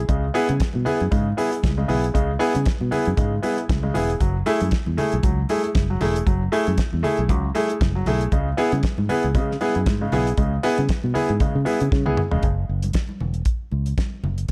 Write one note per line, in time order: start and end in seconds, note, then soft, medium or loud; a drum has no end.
0.09 0.29 C#2 loud
0.09 0.23 C#3 medium
0.09 0.23 G#3 medium
0.09 kick medium
0.09 closed hi-hat medium
0.34 0.49 B3 loud
0.34 0.47 E4 medium
0.34 0.47 G#4 loud
0.34 open hi-hat medium
0.49 0.58 C#3 medium
0.49 0.53 E4 soft
0.49 0.53 G#4 soft
0.49 closed hi-hat medium
0.49 high conga medium
0.60 kick loud
0.60 snare loud
0.60 closed hi-hat medium
0.74 0.84 B2 medium
0.74 high conga medium
0.85 1.00 B3 medium
0.85 1.00 E4 medium
0.85 1.00 G#4 medium
0.85 open hi-hat medium
0.85 muted conga soft
0.85 low conga medium
1.00 1.10 F#2 medium
1.00 closed hi-hat soft
1.11 1.32 G#2 medium
1.11 1.26 C#3 medium
1.11 1.26 G#3 medium
1.11 kick loud
1.11 closed hi-hat medium
1.11 muted conga soft
1.11 low conga medium
1.37 1.52 B3 medium
1.37 1.50 E4 medium
1.37 1.50 G#4 medium
1.37 open hi-hat medium
1.37 high conga soft
1.51 1.56 E4 soft
1.51 1.56 G#4 soft
1.51 closed hi-hat soft
1.63 1.84 C#2 loud
1.63 1.69 E4 soft
1.63 1.69 G#4 soft
1.63 kick loud
1.63 snare loud
1.63 closed hi-hat medium
1.63 muted conga soft
1.63 high conga medium
1.77 1.89 C#3 medium
1.77 1.89 G#3 medium
1.88 2.10 B1 medium
1.88 2.03 B3 medium
1.88 2.03 E4 medium
1.88 2.03 G#4 medium
1.88 open hi-hat medium
1.88 muted conga soft
1.88 low conga medium
2.04 closed hi-hat soft
2.14 2.36 C#2 loud
2.14 2.29 C#3 medium
2.14 2.29 G#3 medium
2.14 kick loud
2.14 closed hi-hat medium
2.39 2.54 B3 medium
2.39 2.53 E4 medium
2.39 2.53 G#4 loud
2.39 open hi-hat medium
2.39 muted conga soft
2.54 2.64 C#3 loud
2.54 2.59 E4 soft
2.54 2.59 G#4 soft
2.54 closed hi-hat medium
2.54 high conga medium
2.65 kick loud
2.65 snare loud
2.65 closed hi-hat medium
2.80 2.90 B2 medium
2.80 high conga medium
2.91 3.06 B3 medium
2.91 3.06 E4 medium
2.91 3.06 G#4 medium
2.91 open hi-hat medium
2.91 low conga medium
3.06 3.16 F#2 medium
3.06 closed hi-hat soft
3.17 3.38 G#2 medium
3.17 3.32 C#3 soft
3.17 3.32 G#3 medium
3.17 kick loud
3.17 closed hi-hat medium
3.17 muted conga soft
3.17 low conga medium
3.43 3.58 B3 medium
3.43 3.56 E4 medium
3.43 3.56 G#4 medium
3.43 open hi-hat medium
3.43 muted conga soft
3.43 high conga medium
3.57 3.62 E4 soft
3.57 3.62 G#4 soft
3.57 closed hi-hat soft
3.69 3.90 C#2 loud
3.69 3.75 E4 soft
3.69 3.75 G#4 soft
3.69 kick loud
3.69 snare loud
3.69 closed hi-hat medium
3.69 high conga medium
3.83 3.95 C#3 medium
3.83 3.95 G#3 medium
3.94 4.16 E1 medium
3.94 4.09 B3 medium
3.94 4.09 E4 medium
3.94 4.09 G#4 medium
3.94 open hi-hat medium
3.94 muted conga soft
3.94 low conga medium
4.10 closed hi-hat medium
4.20 4.41 F#1 loud
4.20 4.35 F#3 medium
4.20 kick medium
4.20 closed hi-hat medium
4.20 muted conga soft
4.46 4.61 A3 medium
4.46 4.60 E4 medium
4.46 4.60 G#4 loud
4.46 open hi-hat medium
4.61 4.70 F#2 loud
4.61 4.66 E4 soft
4.61 4.66 G#4 soft
4.61 closed hi-hat medium
4.61 high conga medium
4.71 kick loud
4.71 snare loud
4.71 closed hi-hat medium
4.71 muted conga soft
4.86 4.96 E2 medium
4.86 high conga medium
4.97 5.12 A3 medium
4.97 5.12 E4 medium
4.97 5.13 G#4 medium
4.97 open hi-hat medium
4.97 low conga medium
5.12 5.22 B1 medium
5.12 closed hi-hat soft
5.23 5.44 C#2 medium
5.23 5.38 F#3 medium
5.23 kick loud
5.23 closed hi-hat medium
5.23 muted conga soft
5.23 low conga medium
5.49 5.64 A3 medium
5.49 5.62 E4 medium
5.49 5.62 G#4 medium
5.49 open hi-hat medium
5.49 muted conga soft
5.49 high conga medium
5.63 5.68 E4 soft
5.63 5.68 G#4 soft
5.63 closed hi-hat soft
5.75 5.96 F#1 medium
5.75 5.81 E4 soft
5.75 5.81 G#4 soft
5.75 kick loud
5.75 snare loud
5.75 closed hi-hat medium
5.75 muted conga soft
5.75 high conga medium
5.90 6.01 F#3 medium
6.01 6.22 E1 medium
6.01 6.15 A3 medium
6.01 6.15 E4 medium
6.01 6.16 G#4 medium
6.01 open hi-hat medium
6.01 muted conga soft
6.01 low conga medium
6.16 closed hi-hat medium
6.27 6.47 F#1 loud
6.27 6.41 F#3 medium
6.27 kick loud
6.27 closed hi-hat medium
6.27 muted conga soft
6.52 6.67 A3 loud
6.52 6.65 E4 medium
6.52 6.65 G#4 medium
6.52 open hi-hat medium
6.67 6.76 F#2 medium
6.67 6.71 E4 soft
6.67 6.71 G#4 soft
6.67 closed hi-hat soft
6.67 high conga medium
6.78 kick loud
6.78 snare loud
6.78 closed hi-hat medium
6.78 muted conga soft
6.93 7.02 E2 medium
6.93 high conga medium
7.03 7.18 A3 medium
7.03 7.18 E4 medium
7.03 7.18 G#4 medium
7.03 open hi-hat medium
7.03 muted conga soft
7.03 low conga medium
7.17 7.30 B1 medium
7.17 closed hi-hat soft
7.29 7.50 C#2 medium
7.29 7.44 F#3 medium
7.29 kick loud
7.29 closed hi-hat medium
7.29 low conga medium
7.55 7.69 A3 medium
7.55 7.68 E4 medium
7.55 7.68 G#4 medium
7.55 open hi-hat medium
7.55 muted conga soft
7.55 high conga medium
7.69 7.74 E4 soft
7.69 7.74 G#4 soft
7.69 closed hi-hat soft
7.80 8.01 F#1 medium
7.80 7.86 E4 soft
7.80 7.86 G#4 soft
7.80 kick loud
7.80 snare loud
7.80 closed hi-hat medium
7.80 muted conga soft
7.80 high conga medium
7.95 8.07 F#3 medium
8.06 8.27 B1 medium
8.06 8.21 A3 medium
8.06 8.21 E4 medium
8.06 8.21 G#4 medium
8.06 open hi-hat medium
8.06 muted conga soft
8.06 low conga medium
8.21 closed hi-hat soft
8.32 8.53 C#2 loud
8.32 8.47 C#3 medium
8.32 8.47 G#3 medium
8.32 kick medium
8.32 closed hi-hat medium
8.32 muted conga soft
8.57 8.72 B3 medium
8.57 8.71 E4 medium
8.57 8.71 G#4 loud
8.57 open hi-hat medium
8.57 muted conga soft
8.72 8.81 C#3 medium
8.72 8.77 E4 soft
8.72 8.77 G#4 soft
8.72 closed hi-hat medium
8.72 high conga medium
8.83 kick loud
8.83 snare loud
8.83 closed hi-hat medium
8.98 9.07 G#2 medium
8.98 high conga medium
9.09 9.24 B3 medium
9.09 9.24 E4 medium
9.09 9.24 G#4 medium
9.09 open hi-hat medium
9.09 muted conga soft
9.09 low conga medium
9.23 9.37 C#2 medium
9.23 closed hi-hat soft
9.35 9.49 C#3 medium
9.35 9.55 C#3 loud
9.35 9.49 G#3 medium
9.35 kick loud
9.35 closed hi-hat medium
9.35 muted conga soft
9.35 low conga medium
9.51 snare soft
9.61 9.75 B3 medium
9.61 9.74 E4 medium
9.61 9.74 G#4 medium
9.61 open hi-hat medium
9.61 muted conga soft
9.61 high conga medium
9.75 9.87 F#2 medium
9.75 9.80 E4 soft
9.75 9.80 G#4 soft
9.75 closed hi-hat soft
9.86 10.07 G#2 medium
9.86 9.93 E4 soft
9.86 9.93 G#4 soft
9.86 kick loud
9.86 snare loud
9.86 closed hi-hat medium
9.86 muted conga soft
9.86 high conga medium
10.01 10.12 C#3 medium
10.01 10.12 G#3 medium
10.12 10.33 B1 medium
10.12 10.27 B3 medium
10.12 10.27 E4 medium
10.12 10.27 G#4 medium
10.12 open hi-hat medium
10.12 low conga medium
10.27 closed hi-hat soft
10.37 10.58 C#2 loud
10.37 10.52 C#3 medium
10.37 10.52 G#3 medium
10.37 kick medium
10.37 closed hi-hat medium
10.37 muted conga soft
10.63 10.78 B3 loud
10.63 10.77 E4 medium
10.63 10.77 G#4 loud
10.63 open hi-hat medium
10.63 muted conga soft
10.78 10.87 C#3 medium
10.78 10.83 E4 soft
10.78 10.83 G#4 soft
10.78 closed hi-hat medium
10.78 high conga medium
10.89 kick loud
10.89 snare loud
10.89 closed hi-hat medium
10.89 muted conga soft
11.04 11.13 B2 medium
11.04 high conga medium
11.14 11.29 B3 medium
11.14 11.29 E4 medium
11.14 11.29 G#4 loud
11.14 open hi-hat medium
11.14 low conga medium
11.29 11.38 G#2 medium
11.29 closed hi-hat soft
11.40 11.55 C#3 medium
11.40 11.55 G#3 medium
11.40 kick loud
11.40 closed hi-hat medium
11.40 muted conga soft
11.40 low conga medium
11.55 11.64 C#3 loud
11.65 11.80 B3 medium
11.65 11.79 E4 medium
11.65 11.79 G#4 medium
11.65 open hi-hat medium
11.65 muted conga soft
11.65 high conga medium
11.80 11.90 C#3 medium
11.80 11.85 E4 soft
11.80 11.85 G#4 soft
11.80 closed hi-hat soft
11.92 12.03 C#3 loud
11.92 kick loud
11.92 snare medium
11.92 muted conga soft
11.92 high conga medium
12.06 12.15 C#2 medium
12.06 12.17 B3 medium
12.06 12.17 E4 medium
12.06 12.18 G#4 medium
12.06 high tom medium
12.17 mid tom loud
12.17 muted conga soft
12.17 low conga medium
12.31 12.41 E1 medium
12.31 12.43 C#3 medium
12.31 12.43 G#3 medium
12.31 floor tom medium
12.43 12.63 F#1 loud
12.43 kick medium
12.43 closed hi-hat medium
12.69 12.89 F#1 medium
12.82 closed hi-hat soft
12.82 high conga medium
12.93 kick medium
12.93 snare loud
12.93 closed hi-hat medium
12.93 muted conga soft
13.09 high conga medium
13.20 13.41 E1 medium
13.20 low conga medium
13.34 closed hi-hat soft
13.45 kick medium
13.45 closed hi-hat medium
13.71 13.92 C#2 medium
13.71 muted conga soft
13.86 closed hi-hat soft
13.98 kick loud
13.98 snare medium
13.98 closed hi-hat medium
13.98 muted conga soft
13.98 high conga medium
14.23 14.44 F#1 medium
14.23 muted conga soft
14.23 low conga medium
14.38 closed hi-hat soft
14.49 closed hi-hat medium